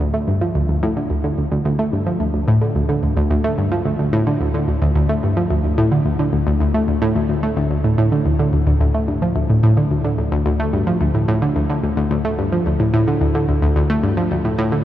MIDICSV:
0, 0, Header, 1, 2, 480
1, 0, Start_track
1, 0, Key_signature, -1, "minor"
1, 0, Tempo, 550459
1, 959, Time_signature, 4, 2, 24, 8
1, 12940, End_track
2, 0, Start_track
2, 0, Title_t, "Synth arpeggio sound"
2, 0, Program_c, 0, 84
2, 120, Note_on_c, 0, 57, 73
2, 184, Note_off_c, 0, 57, 0
2, 239, Note_on_c, 0, 43, 73
2, 304, Note_off_c, 0, 43, 0
2, 361, Note_on_c, 0, 53, 78
2, 457, Note_off_c, 0, 53, 0
2, 481, Note_on_c, 0, 38, 82
2, 545, Note_off_c, 0, 38, 0
2, 602, Note_on_c, 0, 38, 73
2, 665, Note_off_c, 0, 38, 0
2, 722, Note_on_c, 0, 45, 101
2, 818, Note_off_c, 0, 45, 0
2, 841, Note_on_c, 0, 50, 77
2, 905, Note_off_c, 0, 50, 0
2, 960, Note_on_c, 0, 38, 81
2, 1024, Note_off_c, 0, 38, 0
2, 1080, Note_on_c, 0, 50, 75
2, 1145, Note_off_c, 0, 50, 0
2, 1202, Note_on_c, 0, 38, 75
2, 1239, Note_off_c, 0, 38, 0
2, 1321, Note_on_c, 0, 38, 99
2, 1359, Note_off_c, 0, 38, 0
2, 1442, Note_on_c, 0, 38, 103
2, 1479, Note_off_c, 0, 38, 0
2, 1561, Note_on_c, 0, 57, 79
2, 1625, Note_off_c, 0, 57, 0
2, 1680, Note_on_c, 0, 43, 76
2, 1745, Note_off_c, 0, 43, 0
2, 1800, Note_on_c, 0, 53, 75
2, 1897, Note_off_c, 0, 53, 0
2, 1920, Note_on_c, 0, 38, 83
2, 1985, Note_off_c, 0, 38, 0
2, 2041, Note_on_c, 0, 38, 75
2, 2105, Note_off_c, 0, 38, 0
2, 2161, Note_on_c, 0, 45, 99
2, 2258, Note_off_c, 0, 45, 0
2, 2281, Note_on_c, 0, 50, 76
2, 2345, Note_off_c, 0, 50, 0
2, 2401, Note_on_c, 0, 38, 81
2, 2465, Note_off_c, 0, 38, 0
2, 2520, Note_on_c, 0, 50, 78
2, 2585, Note_off_c, 0, 50, 0
2, 2641, Note_on_c, 0, 38, 77
2, 2679, Note_off_c, 0, 38, 0
2, 2761, Note_on_c, 0, 38, 99
2, 2799, Note_off_c, 0, 38, 0
2, 2881, Note_on_c, 0, 38, 97
2, 2919, Note_off_c, 0, 38, 0
2, 3001, Note_on_c, 0, 57, 77
2, 3065, Note_off_c, 0, 57, 0
2, 3121, Note_on_c, 0, 43, 76
2, 3185, Note_off_c, 0, 43, 0
2, 3240, Note_on_c, 0, 53, 76
2, 3337, Note_off_c, 0, 53, 0
2, 3360, Note_on_c, 0, 38, 79
2, 3425, Note_off_c, 0, 38, 0
2, 3481, Note_on_c, 0, 38, 79
2, 3545, Note_off_c, 0, 38, 0
2, 3600, Note_on_c, 0, 45, 100
2, 3697, Note_off_c, 0, 45, 0
2, 3722, Note_on_c, 0, 50, 77
2, 3785, Note_off_c, 0, 50, 0
2, 3841, Note_on_c, 0, 38, 82
2, 3905, Note_off_c, 0, 38, 0
2, 3961, Note_on_c, 0, 50, 75
2, 4025, Note_off_c, 0, 50, 0
2, 4080, Note_on_c, 0, 38, 75
2, 4119, Note_off_c, 0, 38, 0
2, 4201, Note_on_c, 0, 38, 103
2, 4239, Note_off_c, 0, 38, 0
2, 4320, Note_on_c, 0, 38, 98
2, 4359, Note_off_c, 0, 38, 0
2, 4441, Note_on_c, 0, 57, 76
2, 4505, Note_off_c, 0, 57, 0
2, 4561, Note_on_c, 0, 43, 77
2, 4625, Note_off_c, 0, 43, 0
2, 4681, Note_on_c, 0, 53, 78
2, 4777, Note_off_c, 0, 53, 0
2, 4801, Note_on_c, 0, 38, 80
2, 4865, Note_off_c, 0, 38, 0
2, 4921, Note_on_c, 0, 38, 76
2, 4985, Note_off_c, 0, 38, 0
2, 5041, Note_on_c, 0, 45, 102
2, 5137, Note_off_c, 0, 45, 0
2, 5161, Note_on_c, 0, 50, 75
2, 5225, Note_off_c, 0, 50, 0
2, 5281, Note_on_c, 0, 38, 81
2, 5345, Note_off_c, 0, 38, 0
2, 5402, Note_on_c, 0, 50, 76
2, 5466, Note_off_c, 0, 50, 0
2, 5522, Note_on_c, 0, 38, 78
2, 5559, Note_off_c, 0, 38, 0
2, 5641, Note_on_c, 0, 38, 99
2, 5679, Note_off_c, 0, 38, 0
2, 5760, Note_on_c, 0, 38, 97
2, 5799, Note_off_c, 0, 38, 0
2, 5880, Note_on_c, 0, 57, 73
2, 5945, Note_off_c, 0, 57, 0
2, 6000, Note_on_c, 0, 38, 74
2, 6065, Note_off_c, 0, 38, 0
2, 6120, Note_on_c, 0, 45, 105
2, 6184, Note_off_c, 0, 45, 0
2, 6240, Note_on_c, 0, 38, 82
2, 6304, Note_off_c, 0, 38, 0
2, 6359, Note_on_c, 0, 38, 77
2, 6398, Note_off_c, 0, 38, 0
2, 6480, Note_on_c, 0, 57, 77
2, 6577, Note_off_c, 0, 57, 0
2, 6600, Note_on_c, 0, 38, 97
2, 6697, Note_off_c, 0, 38, 0
2, 6720, Note_on_c, 0, 38, 81
2, 6785, Note_off_c, 0, 38, 0
2, 6839, Note_on_c, 0, 45, 75
2, 6937, Note_off_c, 0, 45, 0
2, 6959, Note_on_c, 0, 45, 99
2, 7057, Note_off_c, 0, 45, 0
2, 7080, Note_on_c, 0, 50, 77
2, 7144, Note_off_c, 0, 50, 0
2, 7200, Note_on_c, 0, 38, 84
2, 7264, Note_off_c, 0, 38, 0
2, 7320, Note_on_c, 0, 50, 77
2, 7384, Note_off_c, 0, 50, 0
2, 7440, Note_on_c, 0, 38, 77
2, 7478, Note_off_c, 0, 38, 0
2, 7559, Note_on_c, 0, 38, 101
2, 7598, Note_off_c, 0, 38, 0
2, 7680, Note_on_c, 0, 38, 100
2, 7719, Note_off_c, 0, 38, 0
2, 7800, Note_on_c, 0, 57, 72
2, 7865, Note_off_c, 0, 57, 0
2, 7920, Note_on_c, 0, 43, 74
2, 7985, Note_off_c, 0, 43, 0
2, 8041, Note_on_c, 0, 53, 77
2, 8137, Note_off_c, 0, 53, 0
2, 8159, Note_on_c, 0, 38, 81
2, 8224, Note_off_c, 0, 38, 0
2, 8280, Note_on_c, 0, 45, 75
2, 8377, Note_off_c, 0, 45, 0
2, 8400, Note_on_c, 0, 45, 104
2, 8497, Note_off_c, 0, 45, 0
2, 8521, Note_on_c, 0, 50, 76
2, 8585, Note_off_c, 0, 50, 0
2, 8640, Note_on_c, 0, 38, 81
2, 8705, Note_off_c, 0, 38, 0
2, 8761, Note_on_c, 0, 50, 76
2, 8825, Note_off_c, 0, 50, 0
2, 8881, Note_on_c, 0, 38, 77
2, 8919, Note_off_c, 0, 38, 0
2, 9001, Note_on_c, 0, 38, 102
2, 9039, Note_off_c, 0, 38, 0
2, 9121, Note_on_c, 0, 38, 99
2, 9159, Note_off_c, 0, 38, 0
2, 9242, Note_on_c, 0, 57, 79
2, 9305, Note_off_c, 0, 57, 0
2, 9360, Note_on_c, 0, 43, 76
2, 9425, Note_off_c, 0, 43, 0
2, 9481, Note_on_c, 0, 53, 74
2, 9577, Note_off_c, 0, 53, 0
2, 9601, Note_on_c, 0, 38, 80
2, 9665, Note_off_c, 0, 38, 0
2, 9721, Note_on_c, 0, 45, 75
2, 9817, Note_off_c, 0, 45, 0
2, 9840, Note_on_c, 0, 45, 97
2, 9937, Note_off_c, 0, 45, 0
2, 9960, Note_on_c, 0, 50, 79
2, 10025, Note_off_c, 0, 50, 0
2, 10080, Note_on_c, 0, 38, 85
2, 10144, Note_off_c, 0, 38, 0
2, 10200, Note_on_c, 0, 50, 76
2, 10264, Note_off_c, 0, 50, 0
2, 10321, Note_on_c, 0, 38, 78
2, 10359, Note_off_c, 0, 38, 0
2, 10439, Note_on_c, 0, 38, 99
2, 10478, Note_off_c, 0, 38, 0
2, 10559, Note_on_c, 0, 38, 98
2, 10598, Note_off_c, 0, 38, 0
2, 10679, Note_on_c, 0, 57, 75
2, 10744, Note_off_c, 0, 57, 0
2, 10798, Note_on_c, 0, 43, 74
2, 10864, Note_off_c, 0, 43, 0
2, 10919, Note_on_c, 0, 53, 74
2, 11016, Note_off_c, 0, 53, 0
2, 11038, Note_on_c, 0, 38, 82
2, 11104, Note_off_c, 0, 38, 0
2, 11158, Note_on_c, 0, 45, 81
2, 11256, Note_off_c, 0, 45, 0
2, 11278, Note_on_c, 0, 45, 102
2, 11376, Note_off_c, 0, 45, 0
2, 11399, Note_on_c, 0, 50, 77
2, 11464, Note_off_c, 0, 50, 0
2, 11518, Note_on_c, 0, 38, 81
2, 11584, Note_off_c, 0, 38, 0
2, 11638, Note_on_c, 0, 50, 77
2, 11703, Note_off_c, 0, 50, 0
2, 11758, Note_on_c, 0, 38, 74
2, 11798, Note_off_c, 0, 38, 0
2, 11879, Note_on_c, 0, 38, 101
2, 11918, Note_off_c, 0, 38, 0
2, 11998, Note_on_c, 0, 38, 100
2, 12038, Note_off_c, 0, 38, 0
2, 12118, Note_on_c, 0, 57, 80
2, 12184, Note_off_c, 0, 57, 0
2, 12237, Note_on_c, 0, 43, 78
2, 12303, Note_off_c, 0, 43, 0
2, 12357, Note_on_c, 0, 53, 77
2, 12456, Note_off_c, 0, 53, 0
2, 12478, Note_on_c, 0, 38, 82
2, 12543, Note_off_c, 0, 38, 0
2, 12598, Note_on_c, 0, 45, 75
2, 12696, Note_off_c, 0, 45, 0
2, 12717, Note_on_c, 0, 45, 102
2, 12815, Note_off_c, 0, 45, 0
2, 12837, Note_on_c, 0, 50, 76
2, 12903, Note_off_c, 0, 50, 0
2, 12940, End_track
0, 0, End_of_file